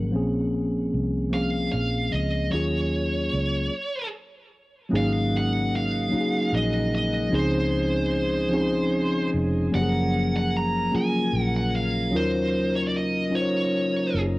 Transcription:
Already playing: fingered electric bass G#1, tine electric piano F3 F#3 A#3 C#4 A#4
0.11 fingered electric bass A#1, tine electric piano F3 A#3 C4 C#4
0.16 tine electric piano G#4
0.94 fingered electric bass C2
1.29 tine electric piano F3 A#3 C4 C#4
1.34 tine electric piano G#4, lead electric guitar F5
1.72 fingered electric bass A#1, lead electric guitar F5
2.12 fingered electric bass C#2, lead electric guitar D#5
2.50 fingered electric bass D#2, tine electric piano F#3 A#3 C#4 F4, lead electric guitar C#5
2.54 tine electric piano G#4
3.33 fingered electric bass C#2
4.89 fingered electric bass G#1, tonewheel organ C#3 G#3 A#3 D#4 F#4, tine electric piano F#3 A#3 C#4 D#4
4.94 tine electric piano G#4, lead electric guitar F5
5.37 lead electric guitar F#5
5.76 lead electric guitar F5
6.09 tine electric piano F#3 A#3 C#4 D#4
6.13 tine electric piano F#4, muted fingered electric bass stroke
6.20 tine electric piano G#4
6.53 fingered electric bass A#1, lead electric guitar D#5
6.95 lead electric guitar D#5
7.29 fingered electric bass C#2, tine electric piano F3 C4 C#4 D#4, tonewheel organ G#4 C5
7.34 tine electric piano G#4, lead electric guitar C5
8.49 tine electric piano F3 C4 C#4
8.53 tine electric piano D#4 G#4
9.34 fingered electric bass F1
9.70 tonewheel organ C#3 A#3 A#4, tine electric piano F3 F#3 A#3 C#4
9.74 fingered electric bass F#1, tine electric piano G4, lead electric guitar F#5
9.82 tine electric piano G#4
10.36 lead electric guitar F#5
10.57 lead electric guitar A#5
10.91 tine electric piano F#3 A#3 C#4 F4 G#4, muted fingered electric bass stroke
10.96 lead electric guitar G#5
11.33 fingered electric bass A#1
11.42 lead electric guitar F#5
11.56 lead electric guitar F#5
11.76 lead electric guitar F5
12.10 fingered electric bass D#2, tine electric piano F#3 C#4 D#4 F4, tonewheel organ D#4
12.15 tine electric piano A#4, lead electric guitar C5
12.76 lead electric guitar C#5
12.87 lead electric guitar D5
12.97 lead electric guitar D#5
13.30 tine electric piano F#3 C#4 D#4 F4
13.35 tine electric piano C5, lead electric guitar C#5
13.41 tine electric piano C#5
14.14 fingered electric bass F#1

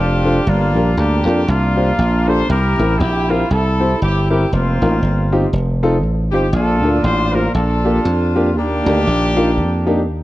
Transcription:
Already playing: slap bass F1, horn section D4 F4 G4
0.25 upright piano D4 F4 A4 C5
0.46 slap bass G1, upright piano G2, horn section A#3 D4 F4
0.75 slap bass A#1, upright piano D4 F4 G4 A#4
0.97 slap bass D2, horn section A#3 D4 G4
1.25 slap bass F2, upright piano D4 F4 G4 A#4
1.48 slap bass C2, horn section A#3 D4 F4
1.76 upright piano D4 F4 G4 C5
1.99 slap bass A#1
2.27 upright piano D4 F4 G4 A4, horn section C5
2.49 slap bass C2, upright piano C3, horn section E4 G4 A#4
2.79 slap bass A1, upright piano C4 E4 G4 A#4
2.99 slap bass A#1, horn section G4
3.29 upright piano C4 E4 G4 A#4, horn section F4
3.51 slap bass C2, horn section E4 A4
3.80 upright piano C4 E4 G4 C5
4.02 slap bass G1, horn section G4
4.30 upright piano C4 E4 G4 A#4, horn section G4
4.52 slap bass F1, horn section A#3 C4 F4
4.82 slap bass A1, upright piano C4 D#4 F4 A#4
5.02 slap bass G1
5.32 upright piano C4 D#4 F4 G4
5.53 slap bass F1
5.83 upright piano C4 D#4 F4 A4
6.03 slap bass A1
6.32 slap bass G1, upright piano C4 D#4 F4 C5, horn section G4
6.53 slap bass A#1, upright piano A#2, horn section D4 F4 A4
6.83 slap bass D2, upright piano A#3 D4 F4 A4
7.04 slap bass A1, horn section C5
7.33 upright piano A#3 D4 F4 C5, horn section A#4
7.53 slap bass A#1, horn section D4 F4 A4
7.85 upright piano A#3 D4 F4 G4
8.05 slap bass F2
8.35 upright piano A#3 D4 F4 G4
8.56 slap bass D#2, upright piano D#3, horn section A#3 D4 G4
8.86 slap bass D2, upright piano A#3 D4 D#4 G4
9.07 slap bass A#1
9.36 upright piano A#3 D4 D#4 F4
9.58 slap bass F2
9.86 upright piano A#3 D4 D#4 G4
10.08 slap bass D#2

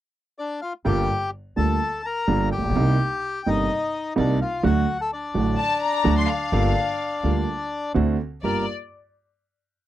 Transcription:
0.38 bandoneon D4 D5
0.62 bandoneon F4 F5
0.85 grand piano G1 G2 D3 G3 A#3 F4, upright bass G1, bandoneon G4 G5
1.56 grand piano D2 D3 G3 A#3 F4, upright bass D2, bandoneon A4 A5
2.05 bandoneon A#4 A#5
2.27 grand piano G1 G2 D3 G3 A#3 F4, upright bass G1
2.52 bandoneon G4 G5
2.58 upright bass A1, grand piano A1
2.64 grand piano A#1, upright bass A#1
2.69 grand piano B1, upright bass B1
2.75 upright bass C2, grand piano C2 C3 G3 A#3 D#4
3.46 grand piano G1 G2 C3 G3 A#3 D#4, upright bass G1, bandoneon D#4 D#5
4.16 grand piano C2 C3 G3 A#3 D#4, upright bass C2, bandoneon D4 D5
4.42 bandoneon F4 F5
4.63 grand piano D2 D3 F#3 A3 F#4, upright bass D2, bandoneon F#4 F#5
5.01 bandoneon A4 A5
5.13 bandoneon D4 D5
5.34 grand piano A1 A2 D3 F#3 A3 F#4, upright bass A1
5.59 violin section A5
5.82 violin section A#5
6.04 grand piano D2 D3 F#3 A3 F#4, upright bass D2
6.17 violin section C6
6.29 violin section F5
6.52 upright bass G1, grand piano G1 G2 D3 G3 A#3 F4
7.24 upright bass D2, grand piano D2 D3 G3 A#3 F4
7.94 grand piano D2 D3 A3 C4 F#4, upright bass D2
8.43 upright bass G1, grand piano G2 A#3 F4 G4, bandoneon A#4, violin section D5

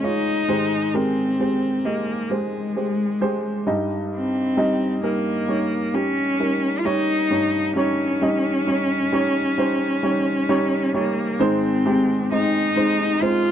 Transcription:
Already playing: upright piano C#2 G#2 G#3 F4 G4 C#5 D#5 F5
0.03 upright piano G#3 F4 C#5, cello D#4
0.48 upright piano G#2 D#3 G#3 G4 C5
0.94 upright piano G#3 G4 A#4, cello C4
1.40 upright piano G#3 G4 C5
1.84 upright piano G#3 G4 D#5, cello A#3
2.30 upright piano G#3 G4 C5, cello G#3
2.76 upright piano G#3 G4 C5
3.21 upright piano G#3 G4 C5
3.67 upright piano G2 G3 D#4 D#5
4.15 cello C4
4.57 upright piano G3 D#4 D#5
5.03 upright piano G3 D#4 A#4, cello A#3
5.48 upright piano G3 D#4 C#5
5.94 upright piano G3 D#4 G4, cello C#4
6.39 upright piano G3 D#4 A#4
6.79 cello F4
6.85 upright piano G3 D#4 C#5, cello D#4
7.30 upright piano G2 G3 D#4 C#5
7.76 upright piano G3 D#4 C#5, cello C#4
8.21 upright piano G3 D#4 D#5
8.67 upright piano G3 D#4 C#5
9.12 upright piano G3 D#4 C#5
9.58 upright piano G3 D#4 C5
10.03 upright piano G3 D#4 C#5
10.49 upright piano G3 D#4 C#5
10.94 upright piano G3 D#4 C#5, cello A#3
11.40 upright piano G#2 D#3 G#3 C4 D#4 C5, cello C4
11.85 upright piano G#3 C4 D#4 G4
12.31 upright piano G#3 C4 D#4 D#5, cello D#4
12.76 upright piano G#3 C4 D#4 C5
13.21 upright piano G#3 C4 D#4 C5, cello F4

